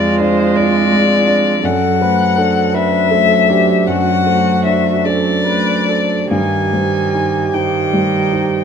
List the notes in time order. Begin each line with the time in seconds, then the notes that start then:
Already playing: F2 G#3 F4 D5
0.19 D4 C5 D5
0.56 D4 D5
0.92 G#3 D5
1.27 D4 D5
1.64 F#2 F#3 A4 F#5
2.01 A3 B4 C5
2.38 D4 A4 C5
2.74 D4 B4 C5 E5
3.11 A3 A4 C5
3.49 D4 G4 C5
3.87 F#2 F#4 F#5
4.26 A3 C5
4.65 D4 C5 E5
5.05 D4 A4 C5 D5
5.46 A3 B4
5.89 D4 A4 C5
6.31 G2 D#3 G4 G#5
6.73 G3 C5
7.14 D#4 C5
7.54 D#3 D#4 C5 G5
7.93 G3 C5
8.33 D#4 C5